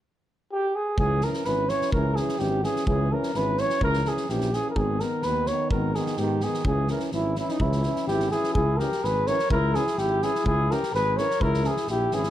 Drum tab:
SD |--------|--ooo-oo|--ooo-oo|---oo-oo|
BD |--------|o-------|o-------|o-------|

SD |-oooooo-|--o-o-o-|--ooo-oo|--ooo-oo|
BD |o-------|o-------|o-------|o-------|

SD |-ooooooo|--ooo-oo|--ooo-oo|--ooo-oo|
BD |o-------|o-------|o-------|o-------|

SD |-oooo-oo|
BD |o-------|